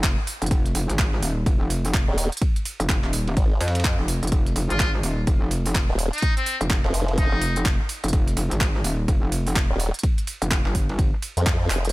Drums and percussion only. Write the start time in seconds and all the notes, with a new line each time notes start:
0.03 kick, snare, clap, closed hi-hat, ride
0.27 open hi-hat, ride
0.42 closed hi-hat
0.46 closed hi-hat
0.51 kick, closed hi-hat, ride
0.66 snare, closed hi-hat
0.75 open hi-hat, ride
0.89 snare, closed hi-hat
0.99 kick, snare, clap, closed hi-hat, ride
1.13 snare
1.23 open hi-hat, ride
1.46 kick, closed hi-hat, ride
1.70 open hi-hat, ride
1.85 snare, open hi-hat
1.94 kick, snare, clap, closed hi-hat, ride
2.18 open hi-hat, ride
2.32 closed hi-hat
2.37 closed hi-hat
2.42 kick, closed hi-hat, ride
2.56 closed hi-hat, ride
2.65 open hi-hat, ride
2.80 closed hi-hat
2.89 kick, snare, clap, closed hi-hat, ride
3.04 clap
3.13 open hi-hat, ride
3.28 ride
3.37 kick, closed hi-hat, ride
3.61 snare, open hi-hat, ride
3.68 snare, ride
3.75 snare, closed hi-hat, ride
3.80 snare, ride
3.84 kick, snare, clap, closed hi-hat, ride
4.08 open hi-hat, ride
4.23 closed hi-hat
4.27 closed hi-hat
4.32 kick, closed hi-hat, ride
4.46 snare, closed hi-hat
4.56 open hi-hat, ride
4.70 snare, closed hi-hat
4.80 kick, snare, clap, closed hi-hat, ride
4.94 snare
5.03 open hi-hat, ride
5.27 kick, closed hi-hat, ride
5.51 open hi-hat, ride
5.66 snare, open hi-hat
5.75 kick, snare, clap, closed hi-hat, ride
5.89 snare
5.99 open hi-hat, ride
6.13 closed hi-hat
6.18 closed hi-hat
6.22 kick, closed hi-hat, ride
6.37 closed hi-hat, ride
6.46 open hi-hat, ride
6.61 closed hi-hat
6.70 kick, snare, clap, closed hi-hat, ride
6.85 clap
6.94 open hi-hat, ride
7.08 ride
7.18 kick, closed hi-hat, ride
7.42 open hi-hat, ride
7.56 closed hi-hat
7.65 kick, snare, clap, closed hi-hat, ride
7.89 open hi-hat, ride
8.04 closed hi-hat
8.08 closed hi-hat
8.13 kick, closed hi-hat, ride
8.28 snare, closed hi-hat
8.37 open hi-hat, ride
8.51 snare, closed hi-hat
8.61 kick, snare, clap, closed hi-hat, ride
8.75 snare
8.84 open hi-hat, ride
9.08 kick, closed hi-hat, ride
9.32 open hi-hat, ride
9.47 snare, open hi-hat
9.56 kick, snare, clap, closed hi-hat, ride
9.80 open hi-hat, ride
9.94 closed hi-hat
9.99 closed hi-hat
10.03 kick, closed hi-hat, ride
10.18 closed hi-hat, ride
10.27 open hi-hat, ride
10.42 closed hi-hat
10.51 kick, snare, clap, closed hi-hat, ride
10.66 clap
10.75 kick, open hi-hat, ride
10.89 ride
10.99 kick, closed hi-hat, ride
11.22 open hi-hat, ride
11.37 closed hi-hat
11.46 kick, snare, clap, closed hi-hat, ride
11.70 clap, open hi-hat, ride
11.85 closed hi-hat
11.89 closed hi-hat